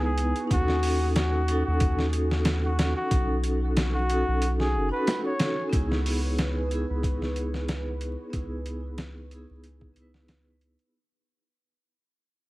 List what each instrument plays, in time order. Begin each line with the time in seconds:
Already playing: sub bass C#2, vibraphone B3 D#4 E4 G#4 B4
0.05 muted trumpet G#4
0.18 closed hi-hat
0.36 closed hi-hat
0.47 sub bass D#2, vibraphone C#4 D#4, kick, closed hi-hat
0.52 muted trumpet F#4, vibraphone F#4 A4
0.68 snare
0.83 open hi-hat
1.16 muted trumpet F#4, snare, closed hi-hat
1.48 vibraphone C#4 D#4 F#4 A4, closed hi-hat
1.65 sub bass D#2, muted trumpet F#4
1.80 kick, closed hi-hat
1.99 snare
2.13 closed hi-hat
2.31 snare
2.45 snare, closed hi-hat
2.65 muted trumpet F#4
2.79 snare, closed hi-hat
2.96 muted trumpet F#4
3.08 sub bass B1, vibraphone C#4 D#4, kick, closed hi-hat
3.13 vibraphone F#4 A4
3.44 closed hi-hat
3.77 snare, closed hi-hat
3.94 muted trumpet F#4
4.09 vibraphone C#4 D#4 F#4 A4, closed hi-hat
4.28 sub bass B1
4.42 closed hi-hat
4.60 muted trumpet G#4, snare
4.75 sub bass F#1
4.89 vibraphone C#4 D#4, muted trumpet B4
4.94 vibraphone F#4 A4
5.07 snare, closed hi-hat
5.26 muted trumpet C#5
5.40 snare, closed hi-hat
5.69 sub bass C#2, vibraphone B3 D#4, analog synth pad B4, kick, closed hi-hat
5.74 vibraphone E4 G#4
5.92 snare
6.06 open hi-hat
6.38 snare, closed hi-hat
6.69 vibraphone B3 D#4 E4 G#4, closed hi-hat
6.90 sub bass C#2
7.03 kick, closed hi-hat
7.22 snare
7.36 closed hi-hat
7.54 snare
7.68 snare, closed hi-hat
8.01 closed hi-hat
8.30 sub bass C#2, vibraphone B3 D#4, kick, closed hi-hat
8.35 vibraphone E4 G#4
8.66 closed hi-hat
8.98 snare, closed hi-hat
9.31 vibraphone B3 D#4 E4 G#4, closed hi-hat
9.50 sub bass C#2
9.64 closed hi-hat
9.81 kick
9.94 vibraphone B3 D#4, closed hi-hat
9.99 vibraphone E4 B4
10.14 snare
10.28 snare, closed hi-hat
10.61 closed hi-hat
10.79 closed hi-hat